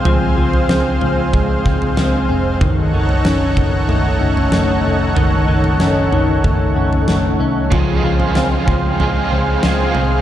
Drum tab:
SD |----o-------o---|----o-------o---|----o-------o---|----o-------o---|
FT |o--o--o-o--o----|o--o--o-o--o----|o--o--o-o--o----|o--o--o-o-----o-|
BD |--------o-o-----|o-----o---------|--------o-------|o-----o---------|